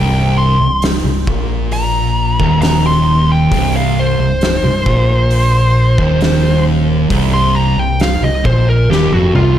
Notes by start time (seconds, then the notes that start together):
Already playing: C1 C2 G5
0.37 C6
0.59 C1 C2
0.82 snare, open hi-hat
1.04 C1 C2
1.27 A#1 A#2, kick
1.72 A#5, open hi-hat
2.39 D#1 D#2, kick
2.62 A#5, snare, open hi-hat
2.87 C6
3.32 G5
3.51 C1 C2, kick, open hi-hat
3.76 F5
3.99 C5
4.18 C1 C2
4.41 snare, open hi-hat
4.62 C1 C2
4.85 A#1 A#2, kick
5.31 open hi-hat
5.98 D#1 D#2, kick
6.21 snare, open hi-hat
7.10 C1 C2, kick, open hi-hat
7.34 C6
7.56 A#5
7.76 C1 C2 G5
8.00 F5, snare, open hi-hat
8.20 C1 C2 D#5
8.45 A#1 A#2 C5, kick
8.69 A#4
8.89 D#1 D#2 G4, snare
9.11 F1 F2 F#4, high tom
9.34 C1 C2 F4, mid tom